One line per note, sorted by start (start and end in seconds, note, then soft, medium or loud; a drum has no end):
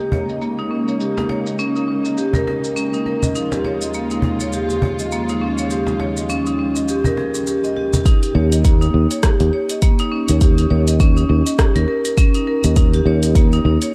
0.00 8.02 C#3 medium
0.00 3.31 G#3 medium
0.00 3.31 A#3 medium
0.00 3.31 D#4 medium
0.00 0.11 G4 medium
0.12 0.27 C#5 medium
0.12 cajon bass medium
0.29 0.40 D#5 medium
0.29 shaker medium
0.42 0.58 A#3 medium
0.42 shaker soft
0.59 0.70 D#4 medium
0.59 shaker soft
0.71 0.86 C#4 medium
0.88 0.99 C#5 medium
0.88 shaker medium
1.00 1.10 G4 medium
1.00 shaker medium
1.17 1.28 D#4 medium
1.17 cajon slap medium
1.17 shaker soft
1.29 1.45 C#5 medium
1.29 cajon slap medium
1.47 1.58 D#5 medium
1.47 shaker medium
1.59 1.75 C#4 medium
1.59 shaker soft
1.76 1.83 D#4 medium
1.76 shaker soft
1.88 2.04 C#4 medium
2.05 2.17 D#5 medium
2.05 shaker medium
2.18 2.27 G4 medium
2.18 shaker soft
2.33 2.46 A#4 medium
2.33 cajon bass medium
2.33 shaker soft
2.47 2.62 A#4 medium
2.47 cajon slap medium
2.64 2.75 A#4 medium
2.64 shaker medium
2.76 2.93 C#4 medium
2.76 shaker medium
2.94 3.01 D#4 medium
2.94 shaker soft
3.06 3.16 A#4 medium
3.06 cajon slap soft
3.23 3.35 D#5 medium
3.23 cajon bass medium
3.23 shaker medium
3.34 8.02 D#2 medium
3.34 8.01 F3 medium
3.34 8.02 G#3 medium
3.34 3.52 D#4 medium
3.34 8.02 F4 medium
3.34 shaker soft
3.52 3.64 G4 medium
3.52 cajon slap medium
3.52 shaker soft
3.64 3.80 C#5 medium
3.64 cajon slap medium
3.81 3.93 D#5 medium
3.81 shaker medium
3.94 4.10 A#3 medium
3.94 shaker soft
4.11 4.22 D#4 medium
4.11 shaker soft
4.22 4.39 D#4 medium
4.22 cajon bass medium
4.40 4.52 C#5 medium
4.40 shaker medium
4.53 4.69 G4 medium
4.53 shaker soft
4.69 4.82 G4 medium
4.69 cajon slap soft
4.69 shaker soft
4.82 4.98 C#5 medium
4.82 cajon bass medium
4.99 5.11 D#5 medium
4.99 shaker medium
5.12 5.28 A#3 medium
5.12 shaker soft
5.29 5.40 D#4 medium
5.29 shaker soft
5.41 5.57 C#4 medium
5.58 5.70 C#5 medium
5.58 shaker medium
5.70 5.80 G4 medium
5.70 shaker medium
5.87 5.99 D#4 medium
5.87 cajon slap medium
5.87 shaker soft
6.00 6.15 C#5 medium
6.00 cajon slap medium
6.17 6.28 D#5 medium
6.17 shaker medium
6.30 6.46 C#4 medium
6.30 shaker medium
6.46 6.54 D#4 medium
6.46 shaker soft
6.59 6.74 C#4 medium
6.76 6.88 D#5 medium
6.76 shaker medium
6.88 6.98 G4 medium
6.88 shaker soft
7.04 7.16 A#4 medium
7.04 cajon bass medium
7.04 shaker soft
7.17 7.33 G#4 medium
7.17 cajon slap medium
7.35 7.47 C#4 medium
7.35 shaker medium
7.47 7.63 G4 medium
7.47 shaker medium
7.64 7.76 D#5 medium
7.64 shaker soft
7.76 7.93 G4 medium
7.76 cajon slap soft
7.93 8.05 G4 medium
7.93 cajon bass medium
7.93 shaker medium
8.06 8.22 D#4 medium
8.06 kick loud
8.06 closed hi-hat medium
8.06 shaker medium
8.23 8.35 G4 medium
8.23 closed hi-hat soft
8.23 shaker soft
8.35 8.88 D#2 loud
8.35 8.50 C#5 medium
8.52 8.63 D#5 medium
8.52 closed hi-hat soft
8.52 shaker medium
8.64 8.81 A#3 medium
8.64 kick loud
8.64 closed hi-hat medium
8.64 shaker medium
8.81 8.93 D#4 medium
8.81 shaker soft
8.94 9.06 D#2 medium
8.94 9.09 D#4 medium
9.11 9.22 C#5 medium
9.11 closed hi-hat soft
9.11 shaker medium
9.23 9.39 G4 medium
9.23 kick medium
9.23 cross-stick medium
9.23 closed hi-hat medium
9.23 shaker medium
9.40 9.49 D#2 loud
9.40 9.52 G4 medium
9.40 closed hi-hat soft
9.40 shaker soft
9.53 9.68 C#5 medium
9.70 9.81 D#5 medium
9.70 closed hi-hat soft
9.70 shaker medium
9.82 9.99 A#3 medium
9.82 kick loud
9.82 closed hi-hat medium
9.82 shaker medium
9.99 10.11 D#4 loud
9.99 closed hi-hat soft
9.99 shaker soft
10.12 10.27 C#4 medium
10.28 10.64 D#2 medium
10.28 10.40 C#5 medium
10.28 closed hi-hat soft
10.28 shaker medium
10.41 10.51 G4 medium
10.41 kick loud
10.41 closed hi-hat medium
10.41 shaker medium
10.58 10.69 D#4 medium
10.58 closed hi-hat soft
10.58 shaker soft
10.70 11.23 D#2 loud
10.70 10.86 C#5 medium
10.87 10.99 D#5 medium
10.87 closed hi-hat soft
10.87 shaker medium
11.00 11.16 C#4 loud
11.00 kick loud
11.00 closed hi-hat soft
11.00 shaker medium
11.17 11.24 D#4 medium
11.17 shaker soft
11.29 11.41 D#2 loud
11.29 11.45 C#4 medium
11.46 11.58 D#5 medium
11.46 closed hi-hat soft
11.46 shaker medium
11.59 11.68 G4 medium
11.59 kick loud
11.59 cross-stick medium
11.59 closed hi-hat medium
11.59 shaker medium
11.76 11.84 D#2 loud
11.76 11.87 A#4 medium
11.76 closed hi-hat soft
11.76 shaker soft
11.88 12.03 A#4 medium
12.05 12.16 A#4 medium
12.05 closed hi-hat soft
12.05 shaker medium
12.17 12.34 C#4 loud
12.17 kick loud
12.17 closed hi-hat medium
12.17 shaker medium
12.34 12.42 D#4 medium
12.34 closed hi-hat soft
12.34 shaker soft
12.47 12.57 A#4 medium
12.64 13.00 D#2 loud
12.64 12.76 D#5 medium
12.64 closed hi-hat soft
12.64 shaker medium
12.76 12.93 D#4 medium
12.76 kick loud
12.76 closed hi-hat medium
12.76 shaker medium
12.93 13.06 G4 medium
12.93 closed hi-hat soft
12.93 shaker soft
13.06 13.58 D#2 loud
13.06 13.21 C#5 medium
13.23 13.34 D#5 medium
13.23 closed hi-hat soft
13.23 shaker medium
13.35 13.52 A#3 medium
13.35 kick loud
13.35 closed hi-hat medium
13.35 shaker medium
13.52 13.64 D#4 medium
13.52 shaker soft
13.65 13.76 D#2 medium
13.65 13.80 D#4 medium
13.82 13.93 C#5 medium
13.82 closed hi-hat soft
13.82 shaker medium